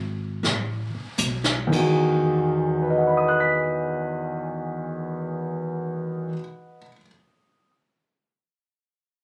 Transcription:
0.00 0.42 G#1 medium
0.43 0.91 A1 medium
0.43 brush sweep soft
0.43 snare soft
0.95 muted upright bass stroke soft
1.18 1.71 B1 medium
1.18 hi-hat pedal medium
1.44 snare soft
1.67 6.27 E2 medium
1.67 6.31 D#3 medium
1.72 6.28 E2 medium
1.72 6.36 F#4 medium
1.72 kick medium
1.72 crash medium
1.78 6.39 G#4 medium
2.82 6.78 B4 soft
2.90 6.82 D#5 soft
2.98 6.86 F#5 soft
3.07 6.90 B5 soft
3.17 6.96 D#6 soft
3.28 7.01 F#6 soft
3.40 7.07 B6 soft

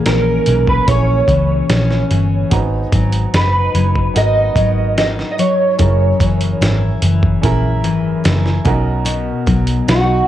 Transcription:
0.00 2.52 A#2 medium
0.00 0.46 E3 medium
0.00 0.57 C#4 medium
0.00 0.57 E4 medium
0.00 0.58 G#4 medium
0.00 0.58 A#4 medium
0.06 0.39 A#1 medium
0.06 0.87 C#4 medium
0.06 0.69 A#4 medium
0.06 snare loud
0.06 closed hi-hat medium
0.46 0.80 B1 medium
0.46 1.27 E3 medium
0.46 closed hi-hat medium
0.67 0.88 B4 medium
0.67 kick medium
0.87 1.21 A#1 medium
0.87 2.21 C#4 medium
0.87 1.68 C#4 medium
0.87 2.21 E4 medium
0.87 2.22 G#4 medium
0.87 2.07 C#5 medium
0.87 2.22 C#5 medium
0.87 kick medium
0.87 closed hi-hat medium
1.28 1.61 C#2 medium
1.28 2.10 E3 medium
1.28 kick medium
1.28 closed hi-hat medium
1.69 2.02 A#1 medium
1.69 2.60 C#4 medium
1.69 snare medium
1.69 closed hi-hat medium
1.91 snare soft
2.11 2.44 G1 medium
2.11 2.60 E3 medium
2.11 closed hi-hat medium
2.50 2.84 G#1 medium
2.50 5.78 G#2 medium
2.50 3.85 B3 medium
2.50 3.85 D#4 medium
2.50 3.85 F#4 medium
2.50 3.86 A#5 medium
2.50 kick medium
2.50 closed hi-hat medium
2.92 3.25 G#1 medium
2.92 3.74 F#3 medium
2.92 kick medium
2.92 closed hi-hat medium
3.13 closed hi-hat medium
3.34 3.67 F#1 medium
3.34 4.14 D#4 medium
3.34 4.17 B4 medium
3.34 snare loud
3.34 closed hi-hat medium
3.74 4.07 F#1 medium
3.74 4.57 F#3 medium
3.74 closed hi-hat medium
3.95 kick medium
4.14 4.49 G#1 medium
4.14 5.48 B3 medium
4.14 5.49 D#4 medium
4.14 4.97 D#4 medium
4.14 5.49 F#4 medium
4.14 5.50 A#4 medium
4.14 4.97 D#5 loud
4.14 closed hi-hat medium
4.56 5.21 G#1 medium
4.56 5.38 F#3 medium
4.56 kick medium
4.56 closed hi-hat medium
4.98 5.88 D#4 medium
4.98 5.07 D#5 medium
4.98 snare loud
4.98 closed hi-hat medium
5.19 snare soft
5.32 5.39 D#5 medium
5.38 6.19 F#3 medium
5.38 6.99 C#5 medium
5.38 closed hi-hat medium
5.78 6.12 F#1 medium
5.78 8.66 F#2 medium
5.78 7.12 C#4 medium
5.78 7.13 E4 medium
5.78 7.13 G#4 medium
5.78 7.14 A#4 medium
5.78 kick loud
5.78 closed hi-hat loud
6.20 6.53 F#1 medium
6.20 7.02 E3 medium
6.20 kick medium
6.20 closed hi-hat medium
6.41 closed hi-hat medium
6.61 6.94 G#1 medium
6.61 7.42 E4 medium
6.61 snare loud
6.61 closed hi-hat medium
7.02 7.35 F#1 medium
7.02 7.83 E3 medium
7.02 closed hi-hat medium
7.23 kick medium
7.42 7.84 A#1 medium
7.42 8.63 C#4 medium
7.42 8.66 E4 medium
7.42 8.23 E4 medium
7.42 8.66 G#4 medium
7.42 8.65 A#4 loud
7.42 kick medium
7.42 closed hi-hat medium
7.84 8.17 G#1 medium
7.84 8.74 E3 medium
7.84 closed hi-hat medium
8.24 8.58 F#1 medium
8.24 8.74 E4 medium
8.24 snare medium
8.24 closed hi-hat medium
8.46 snare soft
8.65 9.31 B1 medium
8.65 9.04 B2 medium
8.65 9.99 C#4 medium
8.65 9.99 D#4 medium
8.65 10.00 F#4 medium
8.65 10.00 A#4 loud
8.65 kick loud
8.65 closed hi-hat medium
9.05 10.28 B2 medium
9.05 closed hi-hat loud
9.46 9.80 B1 medium
9.46 10.27 F#3 medium
9.46 kick medium
9.46 closed hi-hat medium
9.67 closed hi-hat medium
9.88 10.21 B1 medium
9.88 10.28 D#4 medium
9.88 10.28 F#4 medium
9.88 snare loud
9.88 closed hi-hat loud

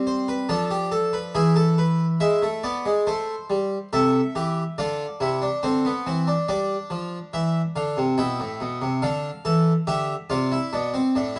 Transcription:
0.00 0.47 G3 medium
0.00 0.47 C4 medium
0.07 0.27 C5 medium
0.28 0.49 B4 medium
0.49 1.32 F3 medium
0.49 1.32 D4 medium
0.49 0.70 A4 medium
0.71 0.91 G4 medium
0.92 1.13 A4 medium
1.13 1.34 B4 medium
1.35 2.18 E3 medium
1.35 3.88 E4 medium
1.35 1.56 G#4 medium
1.56 1.77 A4 medium
1.78 2.05 B4 medium
2.20 2.41 G#3 medium
2.20 2.47 E5 medium
2.42 2.63 A3 medium
2.63 2.84 B3 medium
2.63 2.90 D5 medium
2.86 3.06 G#3 medium
3.07 3.33 A3 medium
3.07 3.90 C5 medium
3.50 3.76 G3 medium
3.93 4.19 C3 medium
3.93 4.19 A4 medium
3.93 4.75 E5 medium
4.35 4.62 E3 medium
4.35 4.62 G4 medium
4.78 5.05 D3 medium
4.78 5.05 F4 medium
4.78 5.61 D5 medium
5.20 5.47 C3 medium
5.20 5.41 E4 medium
5.42 5.62 D4 medium
5.63 5.90 D3 medium
5.63 5.84 C4 medium
5.63 6.46 C5 soft
5.85 6.05 B3 medium
6.06 6.33 E3 medium
6.06 6.27 C4 medium
6.27 6.47 D4 medium
6.48 6.75 G3 medium
6.48 8.15 D4 medium
6.48 7.31 D5 medium
6.90 7.17 F3 medium
7.33 7.60 E3 medium
7.33 7.60 E5 medium
7.76 7.96 D3 medium
7.76 8.02 F5 medium
7.97 8.18 C3 medium
8.18 8.39 B2 medium
8.18 9.00 E4 medium
8.18 9.00 G5 medium
8.40 8.60 A2 medium
8.61 8.81 B2 medium
8.82 9.02 C3 medium
9.02 9.29 D3 medium
9.02 9.29 D4 medium
9.02 9.85 F5 medium
9.45 9.71 E3 medium
9.45 9.71 A4 medium
9.87 10.14 D3 medium
9.87 10.14 G4 medium
9.87 10.14 E5 medium
10.30 10.56 C3 medium
10.30 10.50 F4 medium
10.30 11.39 D5 medium
10.52 10.72 E4 medium
10.73 10.99 B2 medium
10.73 10.93 D4 medium
10.94 11.14 C4 medium
11.16 11.39 A2 medium
11.16 11.36 D4 medium
11.36 11.39 E4 medium

